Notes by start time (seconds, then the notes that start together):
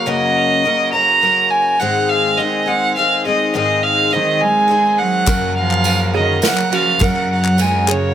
Already playing: C#3 F#3 A#3 F#4
0.06 F#2 C#3 F#3 A#3 C#4 A#4 D#5
0.64 F#3 A#3 C#4 A#4
0.92 F#3 A#3 C#4 A#4 A#5
1.21 F#3 A#3 C#4 A#4
1.51 G#5
1.80 G#2 D#3 G#3 C4 D#4 G#4 F#5
2.09 F5
2.37 G#3 C4 D#4 G#4 D#5
2.66 G#3 C4 D#4 G#4 F#5
2.96 G#3 C4 D#4 G#4 F5
3.25 G#3 C4 D#4 G#4 D#5
3.54 G#2 D#3 G#3 C4 D#4 G#4 D#5
3.83 F5
4.11 D#3 G#3 C4 D#4 G#4 D#5
4.41 G#3 G#5
4.68 G#3 C4 D#4 G#4
4.98 F#3 F#5
5.26 F#2 C#3 F#3 A#3 C#4 F#4 A#4, kick, clap, ride, tambourine
5.43 clap
5.57 F3 F5
5.71 clap
5.84 F#3 C#4 F#4 A#4, ride, tambourine
6.14 F#3 C#4 F#4 G#4 A#4 D#5
6.18 D#3
6.42 F#3 C#4 F#4 A#4 F#5, snare, clap, ride, tambourine
6.46 F#3
6.57 clap
6.70 F3 F#3 C#4 F#4 A#4 F5, clap, ride
6.99 F#2 C#3 F#3 C#4 F#4 A#4 F#5, kick, clap, ride, tambourine
7.16 clap
7.33 F#3 F#5
7.44 clap
7.57 F#3 C#4 F#4 A#4 G#5, ride, tambourine
7.62 G#3
7.88 C#3 G#4 C#5, clap